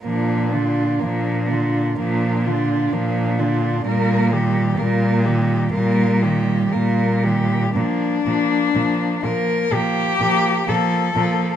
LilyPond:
<<
  \new Staff \with { instrumentName = "Cello" } { \time 4/4 \key bes \major \tempo 4 = 62 d'8 f'8 d'8 f'8 d'8 f'8 d'8 f'8 | bes'8 g'8 bes'8 g'8 bes'8 g'8 bes'8 g'8 | d'4. bes'8 g'4 a'4 | }
  \new Staff \with { instrumentName = "Cello" } { \time 4/4 \key bes \major bes8 d'8 bes8 d'8 bes8 d'8 bes8 d'8 | bes8 g8 bes8 g8 bes8 g8 bes8 g8 | bes8 bes8 bes8 bes8 bes8 bes8 bes8 bes8 | }
  \new Staff \with { instrumentName = "Cello" } { \clef bass \time 4/4 \key bes \major f8 d8 f8 d8 f8 d8 f8 d8 | g8 ees8 g8 ees8 g8 ees8 g8 ees8 | f8 f8 f8 f8 f8 f8 f8 f8 | }
  \new Staff \with { instrumentName = "Cello" } { \clef bass \time 4/4 \key bes \major bes,4 bes,4 bes,4 bes,4 | bes,4 bes,4 bes,4 bes,4 | bes,8 bes,8 bes,8 bes,8 bes,8 bes,8 bes,8 bes,8 | }
>>